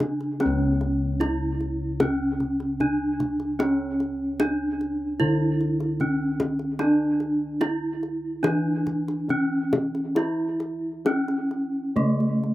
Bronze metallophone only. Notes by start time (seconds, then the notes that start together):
Already playing: D4
0.41 C#4
1.20 E4
2.00 C#4
2.81 D4
3.59 C#4
4.40 D4
5.20 E4
6.01 C#4
6.80 D4
7.61 E4
8.43 D4
9.30 C#4
10.17 E4
11.06 C#4
11.96 A3